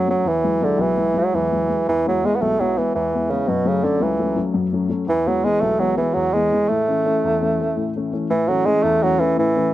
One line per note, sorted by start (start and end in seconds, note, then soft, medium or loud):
0.08 0.22 F#3 soft
0.08 0.30 F#3 medium
0.08 0.22 A3 soft
0.08 0.23 C#4 soft
0.24 0.60 E2 medium
0.24 0.65 E3 medium
0.44 0.60 F#3 soft
0.44 0.61 G#3 soft
0.44 0.61 E4 soft
0.62 0.83 D3 medium
0.62 0.91 F#3 soft
0.62 0.92 G#3 soft
0.62 0.91 E4 medium
0.78 1.14 B1 medium
0.78 1.20 E3 medium
0.97 1.13 F#3 soft
0.97 1.13 G#3 soft
0.97 1.14 E4 soft
1.14 1.44 F#3 soft
1.14 1.44 G#3 soft
1.14 1.44 E4 soft
1.19 1.36 F#3 medium
1.33 1.68 E2 medium
1.33 1.88 E3 medium
1.52 1.68 F#3 soft
1.52 1.69 G#3 soft
1.52 1.68 E4 soft
1.70 1.84 F#3 soft
1.70 1.84 G#3 soft
1.70 1.84 E4 soft
1.88 2.22 E2 medium
1.88 2.05 E3 medium
2.06 2.27 F#3 medium
2.06 2.22 G#3 soft
2.06 2.22 B3 soft
2.06 2.22 E4 soft
2.23 2.52 G#3 medium
2.23 2.37 G#3 medium
2.23 2.52 B3 soft
2.23 2.52 E4 medium
2.35 2.43 B3 medium
2.41 2.76 B1 medium
2.41 2.61 A3 medium
2.60 2.79 F#3 medium
2.60 2.74 G#3 soft
2.60 2.75 B3 soft
2.60 2.75 E4 medium
2.76 2.94 E3 medium
2.76 3.05 G#3 soft
2.76 3.05 B3 soft
2.76 3.06 E4 soft
2.95 3.29 E2 medium
2.95 3.32 E3 medium
3.14 3.29 G#3 soft
3.14 3.30 B3 soft
3.14 3.30 E4 soft
3.31 3.50 C#3 medium
3.31 3.44 G#3 soft
3.31 3.45 B3 soft
3.31 3.45 E4 soft
3.48 3.83 F#2 medium
3.48 3.69 B2 medium
3.65 3.86 C#3 medium
3.65 3.82 F#3 soft
3.65 3.82 A3 soft
3.65 3.82 C#4 soft
3.83 4.04 D3 medium
3.83 4.12 F#3 soft
3.83 4.12 A3 soft
3.83 4.13 C#4 medium
4.00 4.36 C#2 medium
4.00 4.42 E3 medium
4.19 4.35 F#3 soft
4.19 4.36 A3 soft
4.19 4.36 C#4 soft
4.37 4.66 F#3 soft
4.37 4.66 A3 soft
4.37 4.66 C#4 soft
4.54 4.89 F#2 medium
4.73 4.88 F#3 soft
4.73 4.88 A3 soft
4.73 4.89 C#4 soft
4.89 5.04 F#3 soft
4.89 5.04 A3 soft
4.89 5.04 C#4 soft
5.07 5.42 E2 medium
5.07 5.29 E3 medium
5.26 5.42 E3 soft
5.26 5.46 F#3 medium
5.26 5.43 G#3 soft
5.26 5.43 B3 soft
5.44 5.73 E3 soft
5.44 5.62 G#3 loud
5.44 5.73 G#3 soft
5.44 5.73 B3 medium
5.61 5.97 B1 medium
5.61 5.81 A3 medium
5.79 5.95 E3 soft
5.79 5.97 F#3 medium
5.79 5.95 G#3 soft
5.79 5.96 B3 medium
5.96 6.26 E3 soft
5.96 6.16 E3 medium
5.96 6.26 G#3 soft
5.96 6.27 B3 soft
6.14 6.50 E2 medium
6.14 6.35 F#3 medium
6.33 6.50 E3 soft
6.33 6.70 G#3 medium
6.33 6.51 G#3 soft
6.33 6.51 B3 soft
6.52 6.65 E3 soft
6.52 6.66 G#3 soft
6.52 6.66 B3 soft
6.69 7.04 A2 medium
6.69 7.95 A3 medium
6.88 7.03 E3 soft
6.88 7.04 A3 soft
6.88 7.04 C#4 soft
7.05 7.34 E3 soft
7.05 7.34 A3 soft
7.05 7.34 C#4 medium
7.23 7.58 E2 medium
7.41 7.58 E3 soft
7.41 7.58 A3 soft
7.41 7.59 C#4 soft
7.60 7.88 E3 soft
7.60 7.88 A3 soft
7.60 7.89 C#4 soft
7.76 8.11 A2 medium
7.96 8.11 E3 soft
7.96 8.12 A3 soft
7.96 8.12 C#4 soft
8.12 8.26 E3 soft
8.12 8.27 A3 soft
8.12 8.27 C#4 soft
8.30 8.65 A2 medium
8.30 8.50 E3 medium
8.48 8.64 E3 soft
8.48 8.67 F#3 medium
8.48 8.64 A3 soft
8.48 8.65 C#4 soft
8.65 8.94 E3 medium
8.65 8.84 G#3 medium
8.65 8.95 A3 soft
8.65 8.95 C#4 medium
8.83 9.18 E2 medium
8.83 9.04 A3 medium
9.01 9.18 E3 soft
9.01 9.21 F#3 medium
9.01 9.19 A3 soft
9.01 9.19 C#4 medium
9.20 9.37 E3 medium
9.20 9.49 E3 soft
9.20 9.49 A3 soft
9.20 9.49 C#4 soft
9.37 9.72 A2 medium
9.37 9.74 E3 medium
9.56 9.71 E3 soft
9.56 9.71 A3 soft
9.56 9.71 C#4 soft